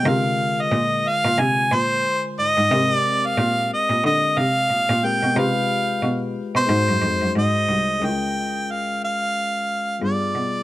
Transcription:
0.03 C3 D3 G#3 F4
0.07 A#4 F5
0.61 D#5
0.72 A#2
1.08 F5
1.24 A#2
1.38 C3 G#5
1.71 A#2 C5
2.38 G#2 D#5
2.57 G#2
2.69 C3 G#3 C4 G4
2.74 A#4
2.95 D5
3.26 F5
3.37 A#2
3.73 D#5
3.89 A#2
4.04 D3 D#5
4.37 C3 F5
4.69 A#2
4.89 A#2
5.02 G#3 C4 G4 A#4 G5
5.22 B2
5.34 C3 G#3 F4 G4
5.38 B4 F5
6.02 B2
6.55 B2 C5
6.66 G#2 G#3 D#4 F#4
6.71 C5
6.88 F#2
7.01 F2
7.21 F#2
7.35 G#2 D#5
7.68 C2
7.99 C#2 G#3 C#4 E4
8.04 A#4 G5
8.09 F4
8.71 F5
9.04 F5
10.00 G2 G3 B3 F4 G#4
10.04 D5
10.35 B2

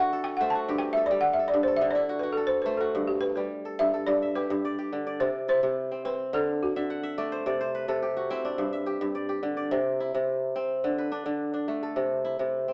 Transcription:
Already playing: D3 A3 E4 A4 B4 F#5
0.00 F#4
0.13 A4
0.24 G5
0.37 A3 F#5
0.41 C5
0.50 A5
0.55 F#4
0.68 G2 G4
0.78 G5
0.93 E5
0.97 A4
1.06 D5
1.11 G3
1.21 F#5
1.33 E5
1.39 A4
1.48 D5
1.54 G2
1.63 C5
1.68 A4
1.77 E5
1.81 D3
1.91 D5
1.95 E4
2.09 F#4
2.19 F#4 B4
2.33 A4
2.37 A4
2.47 C5
2.62 A3 B4
2.66 C5
2.77 F#4 A4
2.95 G2
3.07 G4
3.21 B4
3.36 G3 B4
3.65 A4
3.79 G2 E5
3.94 A4
4.07 G2 D5
4.22 E5
4.35 G4 B4
4.50 G2
4.65 D5
4.79 G4
4.93 D3
5.07 D5
5.20 C3 C5
5.48 E4 C5
5.63 C3
5.91 C4
6.05 C4 B4
6.33 D3 A4
6.63 F#4
6.76 D3 E5
6.90 F#5
7.03 E5
7.18 A3 D5
7.32 C5
7.46 C3 D5
7.61 C5
7.75 B4
7.88 C3 A4
8.03 G4
8.17 F#4
8.30 C4 E4
8.45 D4
8.58 G2
8.73 E5
8.86 G4
9.01 G2
9.15 D5
9.29 G4
9.43 D3
9.57 D5
9.71 C3
10.00 E4
10.15 C3
10.56 C4
10.84 D3
10.98 B4
11.12 D4
11.26 D3
11.54 D4
11.68 A3
11.83 A4
11.96 C3
12.25 E4
12.39 C3
12.68 C4

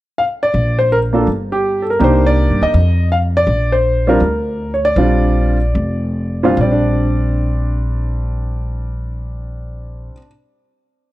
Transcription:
0.18 F5
0.43 D5
0.54 A#1
0.79 C5
0.92 A#4
1.13 A#3 D4 F4 A4
1.27 G1
1.52 G4
1.82 A4
1.90 A#4
1.99 C2 A#3 D4 D#4 G4
2.04 C5
2.27 D5
2.50 G2
2.62 D#2 D#5
2.74 F2
3.12 F5
3.37 D5
3.47 A#1
3.72 C5
4.07 G3 C4 D4 F4 A#4
4.20 D2
4.74 C#5
4.85 D5
4.96 A#1 G3 C4 D4 F4
5.75 F1
6.43 A#2 G3 C4 D4 F4
6.55 A#1 G3
6.61 C4 D5
6.71 D4

